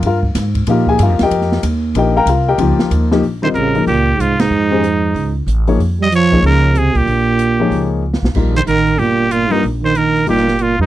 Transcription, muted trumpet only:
0, 0, Header, 1, 2, 480
1, 0, Start_track
1, 0, Tempo, 320171
1, 1000, Time_signature, 4, 2, 24, 8
1, 16281, End_track
2, 0, Start_track
2, 0, Title_t, "Muted trumpet"
2, 0, Program_c, 0, 59
2, 5151, Note_on_c, 0, 72, 88
2, 5228, Note_off_c, 0, 72, 0
2, 5318, Note_on_c, 0, 70, 80
2, 5762, Note_off_c, 0, 70, 0
2, 5810, Note_on_c, 0, 67, 88
2, 6307, Note_on_c, 0, 65, 79
2, 6329, Note_off_c, 0, 67, 0
2, 6602, Note_on_c, 0, 63, 76
2, 6625, Note_off_c, 0, 65, 0
2, 8029, Note_off_c, 0, 63, 0
2, 9032, Note_on_c, 0, 75, 93
2, 9174, Note_off_c, 0, 75, 0
2, 9224, Note_on_c, 0, 73, 93
2, 9639, Note_off_c, 0, 73, 0
2, 9688, Note_on_c, 0, 70, 91
2, 10165, Note_on_c, 0, 68, 80
2, 10188, Note_off_c, 0, 70, 0
2, 10445, Note_on_c, 0, 67, 78
2, 10468, Note_off_c, 0, 68, 0
2, 11874, Note_off_c, 0, 67, 0
2, 12842, Note_on_c, 0, 72, 84
2, 12919, Note_off_c, 0, 72, 0
2, 13012, Note_on_c, 0, 70, 87
2, 13476, Note_on_c, 0, 67, 86
2, 13498, Note_off_c, 0, 70, 0
2, 13966, Note_on_c, 0, 65, 81
2, 13989, Note_off_c, 0, 67, 0
2, 14267, Note_on_c, 0, 63, 78
2, 14290, Note_off_c, 0, 65, 0
2, 14446, Note_off_c, 0, 63, 0
2, 14764, Note_on_c, 0, 72, 85
2, 14944, Note_on_c, 0, 70, 85
2, 14967, Note_off_c, 0, 72, 0
2, 15415, Note_off_c, 0, 70, 0
2, 15430, Note_on_c, 0, 67, 83
2, 15920, Note_on_c, 0, 65, 80
2, 15943, Note_off_c, 0, 67, 0
2, 16202, Note_off_c, 0, 65, 0
2, 16211, Note_on_c, 0, 63, 78
2, 16281, Note_off_c, 0, 63, 0
2, 16281, End_track
0, 0, End_of_file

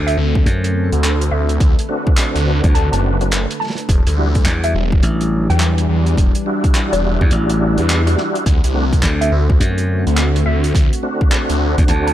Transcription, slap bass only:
0, 0, Header, 1, 2, 480
1, 0, Start_track
1, 0, Tempo, 571429
1, 1347, Time_signature, 4, 2, 24, 8
1, 10193, End_track
2, 0, Start_track
2, 0, Title_t, "Slap bass"
2, 0, Program_c, 0, 36
2, 0, Note_on_c, 0, 38, 100
2, 132, Note_off_c, 0, 38, 0
2, 385, Note_on_c, 0, 42, 97
2, 752, Note_off_c, 0, 42, 0
2, 2217, Note_on_c, 0, 38, 99
2, 2292, Note_off_c, 0, 38, 0
2, 3747, Note_on_c, 0, 40, 100
2, 3973, Note_off_c, 0, 40, 0
2, 4226, Note_on_c, 0, 33, 98
2, 4593, Note_off_c, 0, 33, 0
2, 6057, Note_on_c, 0, 40, 98
2, 6132, Note_off_c, 0, 40, 0
2, 6148, Note_on_c, 0, 33, 100
2, 6514, Note_off_c, 0, 33, 0
2, 7587, Note_on_c, 0, 38, 101
2, 7812, Note_off_c, 0, 38, 0
2, 8065, Note_on_c, 0, 42, 101
2, 8432, Note_off_c, 0, 42, 0
2, 9896, Note_on_c, 0, 38, 103
2, 9972, Note_off_c, 0, 38, 0
2, 9984, Note_on_c, 0, 38, 103
2, 10193, Note_off_c, 0, 38, 0
2, 10193, End_track
0, 0, End_of_file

